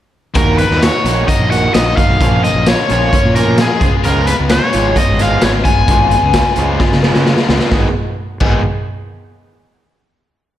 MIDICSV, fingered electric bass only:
0, 0, Header, 1, 2, 480
1, 0, Start_track
1, 0, Tempo, 460123
1, 383, Time_signature, 4, 2, 24, 8
1, 11037, End_track
2, 0, Start_track
2, 0, Title_t, "Fingered electric bass"
2, 0, Program_c, 0, 33
2, 372, Note_on_c, 0, 39, 83
2, 661, Note_off_c, 0, 39, 0
2, 730, Note_on_c, 0, 39, 84
2, 925, Note_off_c, 0, 39, 0
2, 1087, Note_on_c, 0, 34, 79
2, 1283, Note_off_c, 0, 34, 0
2, 1448, Note_on_c, 0, 34, 81
2, 1740, Note_off_c, 0, 34, 0
2, 1821, Note_on_c, 0, 34, 89
2, 2012, Note_off_c, 0, 34, 0
2, 2178, Note_on_c, 0, 35, 78
2, 2275, Note_off_c, 0, 35, 0
2, 2304, Note_on_c, 0, 34, 94
2, 2589, Note_off_c, 0, 34, 0
2, 2657, Note_on_c, 0, 34, 80
2, 2850, Note_off_c, 0, 34, 0
2, 3029, Note_on_c, 0, 34, 77
2, 3218, Note_off_c, 0, 34, 0
2, 3394, Note_on_c, 0, 46, 78
2, 3581, Note_off_c, 0, 46, 0
2, 3632, Note_on_c, 0, 46, 77
2, 3820, Note_off_c, 0, 46, 0
2, 3976, Note_on_c, 0, 37, 77
2, 4076, Note_off_c, 0, 37, 0
2, 4229, Note_on_c, 0, 37, 90
2, 4514, Note_off_c, 0, 37, 0
2, 4586, Note_on_c, 0, 37, 89
2, 4777, Note_off_c, 0, 37, 0
2, 4948, Note_on_c, 0, 32, 83
2, 5139, Note_off_c, 0, 32, 0
2, 5305, Note_on_c, 0, 32, 80
2, 5592, Note_off_c, 0, 32, 0
2, 5660, Note_on_c, 0, 32, 98
2, 5854, Note_off_c, 0, 32, 0
2, 6028, Note_on_c, 0, 32, 79
2, 6124, Note_off_c, 0, 32, 0
2, 6134, Note_on_c, 0, 32, 103
2, 6426, Note_off_c, 0, 32, 0
2, 6502, Note_on_c, 0, 37, 87
2, 6695, Note_off_c, 0, 37, 0
2, 6860, Note_on_c, 0, 37, 84
2, 7055, Note_off_c, 0, 37, 0
2, 7222, Note_on_c, 0, 49, 81
2, 7415, Note_off_c, 0, 49, 0
2, 7469, Note_on_c, 0, 49, 81
2, 7659, Note_off_c, 0, 49, 0
2, 7813, Note_on_c, 0, 37, 81
2, 7915, Note_off_c, 0, 37, 0
2, 8048, Note_on_c, 0, 32, 92
2, 8192, Note_off_c, 0, 32, 0
2, 8770, Note_on_c, 0, 32, 90
2, 9001, Note_off_c, 0, 32, 0
2, 11037, End_track
0, 0, End_of_file